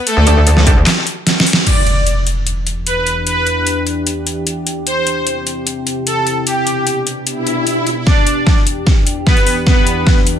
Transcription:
0.07 A3 A4, closed hi-hat
0.17 D2
0.27 D4 G4 A4, closed hi-hat
0.47 closed hi-hat
0.57 C#2, snare
0.67 D4 G4 A4, kick, closed hi-hat
0.77 D2
0.87 snare, clap, closed hi-hat
1.07 closed hi-hat
1.27 snare, closed hi-hat
1.40 snare
1.47 open hi-hat
1.53 snare
1.67 E2 E3 D4 G4 D5, closed hi-hat, crash, impact
1.87 closed hi-hat
2.07 closed hi-hat
2.27 closed hi-hat
2.47 closed hi-hat
2.67 closed hi-hat
2.87 B4, closed hi-hat
3.07 closed hi-hat
3.27 B4, closed hi-hat
3.47 closed hi-hat
3.67 closed hi-hat
3.87 closed hi-hat
4.07 closed hi-hat
4.27 closed hi-hat
4.47 closed hi-hat
4.67 closed hi-hat
4.86 C3 C4 E4 C5, closed hi-hat
5.07 closed hi-hat
5.27 closed hi-hat
5.47 closed hi-hat
5.67 closed hi-hat
5.87 closed hi-hat
6.07 A4, closed hi-hat
6.27 closed hi-hat
6.47 B2 B3 D4 G4, closed hi-hat
6.67 closed hi-hat
6.87 closed hi-hat
7.07 closed hi-hat
7.27 closed hi-hat, swell
7.47 closed hi-hat
7.67 closed hi-hat
7.87 closed hi-hat
8.07 E2 E3 D4 G4 D5, kick, snare
8.27 closed hi-hat
8.47 kick, snare
8.67 closed hi-hat
8.87 kick, snare
9.07 closed hi-hat
9.27 B3 B4, kick, snare
9.37 closed hi-hat
9.47 open hi-hat
9.67 B3 B4, kick, snare
9.87 closed hi-hat
10.07 kick, snare
10.27 closed hi-hat

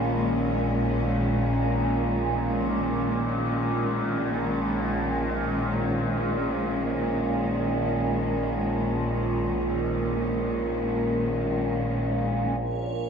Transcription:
Already playing: A#1 A#2 D#3 G#3 C#4
12.61 A#1 A#2 C#5

